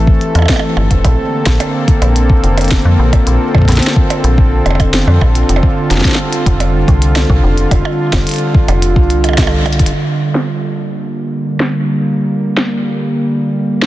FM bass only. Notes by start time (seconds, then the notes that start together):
Already playing: A1
0.35 E2
0.77 G1
0.91 E1
1.05 A#1
1.46 A#1
2.02 A#1
2.43 F1
2.85 F2
2.99 A#1
3.27 A#1
3.68 A#1
4.24 A#1
4.66 F1
5.07 F2
5.21 A#1
5.49 F1
5.91 F1
6.46 F1
6.88 C2
7.30 C2
7.43 F1
7.71 F1
8.13 F1
8.68 F1
8.96 C2
9.80 D1